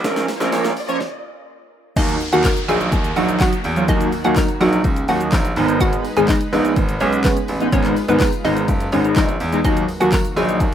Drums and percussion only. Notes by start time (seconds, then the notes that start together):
0.04 kick, snare, closed hi-hat, tambourine, shaker
0.16 snare, shaker
0.28 snare, open hi-hat, tambourine, shaker
0.40 snare, tambourine, shaker
0.52 snare, closed hi-hat, tambourine, shaker
0.64 snare, shaker
0.76 open hi-hat, tambourine, shaker
0.89 shaker
1.00 kick, snare
1.96 kick, closed hi-hat, crash, tambourine, shaker
2.09 closed hi-hat, shaker
2.20 open hi-hat, tambourine, shaker
2.33 closed hi-hat, shaker
2.44 kick, snare, clap, closed hi-hat, tambourine, shaker
2.57 closed hi-hat, shaker
2.68 open hi-hat, tambourine, shaker
2.80 closed hi-hat, tambourine, shaker
2.92 kick, closed hi-hat, tambourine, shaker
3.04 closed hi-hat, shaker
3.16 open hi-hat, tambourine, shaker
3.29 closed hi-hat, shaker
3.40 kick, snare, clap, closed hi-hat, tambourine, shaker
3.53 closed hi-hat, shaker
3.64 open hi-hat, tambourine, shaker
3.76 closed hi-hat, shaker
3.88 kick, closed hi-hat, tambourine, shaker
4.01 closed hi-hat, shaker
4.12 open hi-hat, tambourine, shaker
4.24 closed hi-hat, shaker
4.36 kick, snare, clap, closed hi-hat, tambourine, shaker
4.48 closed hi-hat, shaker
4.61 open hi-hat, tambourine, shaker
4.73 closed hi-hat, tambourine, shaker
4.84 kick, closed hi-hat, tambourine, shaker
4.96 closed hi-hat, shaker
5.08 open hi-hat, tambourine, shaker
5.21 closed hi-hat, shaker
5.32 kick, snare, clap, closed hi-hat, tambourine, shaker
5.45 closed hi-hat, shaker
5.56 open hi-hat, tambourine, shaker
5.68 closed hi-hat, tambourine, shaker
5.80 kick, closed hi-hat, tambourine, shaker
5.93 closed hi-hat, shaker
6.05 open hi-hat, tambourine, shaker
6.17 closed hi-hat, shaker
6.28 kick, snare, clap, closed hi-hat, tambourine, shaker
6.41 closed hi-hat, shaker
6.53 open hi-hat, tambourine, shaker
6.64 closed hi-hat, tambourine, shaker
6.76 kick, closed hi-hat, tambourine, shaker
6.88 closed hi-hat, tambourine, shaker
7.00 open hi-hat, tambourine, shaker
7.13 closed hi-hat, shaker
7.24 kick, snare, clap, closed hi-hat, tambourine, shaker
7.37 closed hi-hat, shaker
7.48 open hi-hat, tambourine, shaker
7.60 closed hi-hat, shaker
7.72 kick, closed hi-hat, tambourine, shaker
7.84 clap, closed hi-hat, shaker
7.96 open hi-hat, tambourine, shaker
8.09 closed hi-hat, tambourine, shaker
8.20 kick, snare, clap, closed hi-hat, tambourine, shaker
8.32 closed hi-hat, shaker
8.45 open hi-hat, tambourine, shaker
8.56 closed hi-hat, tambourine, shaker
8.68 kick, closed hi-hat, tambourine, shaker
8.80 closed hi-hat, tambourine, shaker
8.92 open hi-hat, tambourine, shaker
9.04 closed hi-hat, shaker
9.16 kick, snare, clap, closed hi-hat, tambourine, shaker
9.29 closed hi-hat, shaker
9.40 open hi-hat, tambourine, shaker
9.52 closed hi-hat, tambourine, shaker
9.64 kick, closed hi-hat, tambourine, shaker
9.77 closed hi-hat, shaker
9.88 open hi-hat, tambourine, shaker
10.01 closed hi-hat, tambourine, shaker
10.12 kick, snare, clap, closed hi-hat, tambourine, shaker
10.25 closed hi-hat, shaker
10.37 open hi-hat, tambourine, shaker
10.49 closed hi-hat, tambourine, shaker
10.60 kick, closed hi-hat, tambourine, shaker